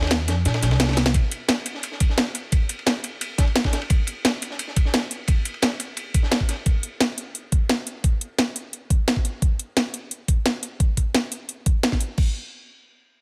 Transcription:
Already playing: upright bass D#2
0.02 snare, ride
0.07 snare, ride
0.11 snare, closed hi-hat, ride
0.28 upright bass F2, snare, closed hi-hat, ride
0.45 upright bass A#2, snare, closed hi-hat, ride
0.54 snare, ride
0.63 upright bass C2, snare, closed hi-hat, ride
0.71 snare, ride
0.80 snare, closed hi-hat, ride
0.84 snare, ride
0.89 snare, ride
0.92 snare, ride
0.97 snare, closed hi-hat, ride
1.06 snare
1.14 kick, closed hi-hat, ride
1.31 closed hi-hat, ride
1.48 snare, closed hi-hat, ride
1.66 closed hi-hat, ride
1.74 snare
1.83 closed hi-hat, ride
1.92 snare
2.00 kick, closed hi-hat, ride
2.09 snare
2.18 snare, closed hi-hat, ride
2.26 ride
2.35 closed hi-hat, ride
2.52 kick, closed hi-hat, ride
2.69 closed hi-hat, ride
2.79 ride
2.86 snare, closed hi-hat, ride
3.04 closed hi-hat, ride
3.21 closed hi-hat, ride
3.38 kick, snare, closed hi-hat, ride
3.47 ride
3.56 snare, closed hi-hat, ride
3.64 kick, snare, ride
3.73 snare, closed hi-hat, ride
3.82 ride
3.90 kick, closed hi-hat, ride
4.07 closed hi-hat, ride
4.25 snare, closed hi-hat, ride
4.42 closed hi-hat, ride
4.50 snare
4.59 closed hi-hat, ride
4.68 snare
4.76 kick, closed hi-hat, ride
4.85 snare
4.94 snare, closed hi-hat, ride
5.03 ride
5.11 closed hi-hat
5.28 kick, closed hi-hat, ride
5.45 closed hi-hat, ride
5.54 ride
5.62 snare, closed hi-hat, ride
5.80 closed hi-hat, ride
5.97 closed hi-hat, ride
6.14 kick, closed hi-hat, ride
6.23 snare
6.31 snare, closed hi-hat, ride
6.40 kick, ride
6.49 snare, closed hi-hat, ride
6.66 kick, closed hi-hat
6.83 closed hi-hat
7.00 snare, closed hi-hat
7.18 closed hi-hat
7.35 closed hi-hat
7.52 kick, closed hi-hat
7.69 snare, closed hi-hat
7.87 closed hi-hat
8.04 kick, closed hi-hat
8.21 closed hi-hat
8.39 snare, closed hi-hat
8.56 closed hi-hat
8.73 closed hi-hat
8.90 kick, closed hi-hat
9.08 snare, closed hi-hat
9.16 kick
9.25 closed hi-hat
9.42 kick, closed hi-hat
9.59 closed hi-hat
9.77 snare, closed hi-hat
9.94 closed hi-hat
10.11 closed hi-hat
10.28 kick, closed hi-hat
10.46 snare, closed hi-hat
10.63 closed hi-hat
10.80 kick, closed hi-hat
10.97 kick, closed hi-hat
11.15 snare, closed hi-hat
11.32 closed hi-hat
11.49 closed hi-hat
11.66 kick, closed hi-hat
11.83 snare, closed hi-hat
11.92 kick, snare
12.01 closed hi-hat
12.18 kick, crash

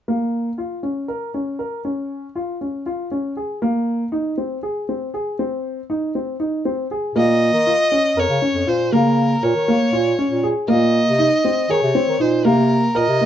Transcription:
0.08 grand piano A#3
0.58 grand piano F4
0.83 grand piano C#4
1.08 grand piano A#4
1.34 grand piano C#4
1.59 grand piano A#4
1.85 grand piano C#4
2.35 grand piano F4
2.61 grand piano C#4
2.86 grand piano F4
3.12 grand piano C#4
3.37 grand piano G#4
3.62 grand piano A#3
4.12 grand piano D#4
4.38 grand piano C4
4.63 grand piano G#4
4.89 grand piano C4
5.14 grand piano G#4
5.39 grand piano C4
5.90 grand piano D#4
6.15 grand piano C4
6.40 grand piano D#4
6.65 grand piano C4
6.91 grand piano G#4
7.15 bass clarinet A#2, grand piano A#3, violin D#5
7.53 bass clarinet D#3
7.67 grand piano F4
7.92 grand piano C#4
8.16 bass clarinet F2, grand piano A#4, violin C#5
8.29 bass clarinet C#3
8.42 grand piano C#4
8.54 bass clarinet F2
8.67 bass clarinet A#2, grand piano F4, violin C5
8.92 bass clarinet C#3, grand piano A#3, violin A#4
9.43 bass clarinet A#2, grand piano A#4, violin C#5
9.55 bass clarinet D#3
9.68 grand piano A#3
9.93 bass clarinet A#2, grand piano F4
10.19 grand piano C#4
10.31 bass clarinet A#2
10.43 grand piano G#4
10.68 bass clarinet A#2, grand piano A#3, violin D#5
11.07 bass clarinet C3
11.19 grand piano D#4
11.45 grand piano C4
11.70 bass clarinet D#3, grand piano G#4, violin C#5
11.83 bass clarinet C3
11.95 grand piano C4
12.08 bass clarinet D#3
12.20 bass clarinet A#2, grand piano D#4, violin C5
12.45 bass clarinet C3, grand piano A#3, violin A#4
12.95 bass clarinet A#2, grand piano A#4, violin D#5
13.08 bass clarinet C3
13.21 grand piano A#3

